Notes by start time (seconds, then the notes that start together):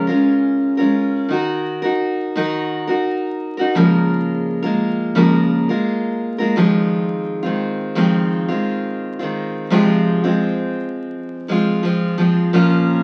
0.07 G#3 C#4 F4 A#4
0.77 C#4 F4 A#4
0.81 G#3
1.29 D#3 D#4 F#4
1.33 A#4
1.82 D#4 F#4 A#4
2.36 D#3 D#4 F#4 A#4
2.87 D#4 F#4 A#4
3.57 D#4 F#4 A#4
3.75 C#3 F3 G#3 A#3 F4 A#4
4.62 G#3 A#3 F4 A#4
5.15 C#3 F3 G#3 A#3 F4 A#4
5.69 G#3 A#3 F4 A#4
6.38 G#3 A#3 F4 A#4
6.56 F2 D#3 F3 G#3 C4 F4
7.43 D#3 G#3 C4 F4
7.95 F2 D#3 F3 G#3 C4 F4
8.48 D#3 G#3 C4 F4
9.19 D#3 G#3 C4 F4
9.70 F2 C3 F3 G#3 C4 F4
10.24 F3 G#3 C4 F4
11.48 F3 G#3 C4 F4
11.83 F3 G#3 C4 F4
12.18 F3 G#3 C4 F4
12.53 A#2 F3 A#3 C#4 F4